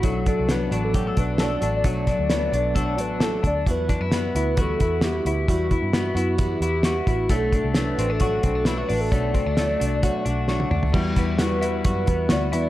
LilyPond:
<<
  \new Staff \with { instrumentName = "Soft synth lead" } { \time 4/4 \key e \minor \tempo 4 = 132 a'8 a'8 b'8. a'8. b'8 d''8. d''16 | d''2~ d''8 b'8 a'8 d''8 | b'4 b'4 a'4 g'4 | fis'4 fis'4 g'4. fis'8 |
a'8 a'8 b'8. a'8. a'8 b'8. a'16 | d''2.~ d''8 r8 | r8 b'4. b'4 d''4 | }
  \new Staff \with { instrumentName = "Clean electric guitar" } { \time 4/4 \key e \minor fis8 d'8 b8 d'8 g'16 a'16 d'8 a'8 d'8 | fis8 d'8 b8 d'8 a'8 d'8 a'8 d'8 | r8 d'16 e'16 b8 e'8 fis'8 e'4 e'8~ | e'8 e'8 b8 e'4 e'8 fis'8 e'8 |
a8 d'8 a8 c'16 d'16 fis'8 c'16 d'16 e'16 fis'16 d'8 | a8 c'16 d'16 a8 d'8 fis'8 d'8 fis'8 d'8 | g8 e'8 fis'8 e'8 fis'8 b8 fis'8 e'8 | }
  \new Staff \with { instrumentName = "Steel-string acoustic guitar" } { \time 4/4 \key e \minor <b, fis a d' fis'>8 <a d' fis'>8 <fis a d' fis'>8 <a d' fis'>8 <b, fis a d' fis'>8 <a d' fis'>8 <fis a d' fis'>8 <a d' fis'>8 | <b, fis a d' fis'>8 <a d' fis'>8 <fis a d' fis'>8 <a d' fis'>8 <b, fis a d' fis'>8 <a d' fis'>8 <fis a d' fis'>8 <a d' fis'>8 | <e g b e' fis'>8 <b e' fis'>8 <g b e' fis'>8 <b e' fis'>8 <e g b e' fis'>8 <b e' fis'>8 <g b e' fis'>8 <b e' fis'>8 | <e g b e' fis'>8 <b e' fis'>8 <g b e' fis'>8 <b e' fis'>8 <e g b e' fis'>8 <b e' fis'>8 <g b e' fis'>8 <b e' fis'>8 |
<b, fis a d' fis'>8 <a d' fis'>8 <fis a d' fis'>8 <a d' fis'>8 <b, fis a d' fis'>8 <a d' fis'>8 <fis a d' fis'>8 <a d' fis'>8 | <b, fis a d' fis'>8 <a d' fis'>8 <fis a d' fis'>8 <a d' fis'>8 <b, fis a d' fis'>8 <a d' fis'>8 <fis a d' fis'>8 <a d' fis'>8 | <e g b e' fis'>8 <b e' fis'>8 <g b e' fis'>8 <b e' fis'>8 <e g b e' fis'>8 <b e' fis'>8 <g b e' fis'>8 <b e' fis'>8 | }
  \new Staff \with { instrumentName = "Picked electric bass" } { \clef bass \time 4/4 \key e \minor b,,8. c,8. a,,4 b,,4 a,,8 | b,,8. d,8. b,,4 a,,4 d,8 | e,8. fis,8. d,4 e,4 d,8 | e,8. g,8. fis,4 e,4 a,,8 |
b,,8. c,8. a,,4 b,,4 a,,8 | b,,8. d,8. c,8. r16 b,,4 d,8 | e,8 e,4. fis,8 e,8 d,8 e,8 | }
  \new DrumStaff \with { instrumentName = "Drums" } \drummode { \time 4/4 <hh bd>8 <hh bd>8 <hh sn>8 hh8 <hh bd>8 <hh bd>8 <hh sn>8 hh8 | <hh bd>8 <hh bd sn>8 <hh sn>8 hh8 <hh bd>8 hh8 <hh sn>8 <hh bd>8 | <hh bd>8 <hh bd sn>8 <hh sn>8 hh8 <hh bd>8 <hh bd>8 <hh sn>8 hh8 | <hh bd>8 <hh bd>8 <hh sn>8 hh8 <hh bd>8 hh8 <hh sn>8 <hh bd>8 |
<hh bd>8 <hh bd>8 <hh sn>8 hh8 <hh bd>8 <hh bd>8 <hh sn>8 hho8 | <hh bd>8 <hh bd>8 <hh sn>8 hh8 <hh bd>8 hh8 sn16 tommh16 toml16 tomfh16 | <cymc bd>8 <hh bd sn>8 <hh sn>8 hh8 <hh bd>8 <hh bd>8 <hh sn>8 hh8 | }
>>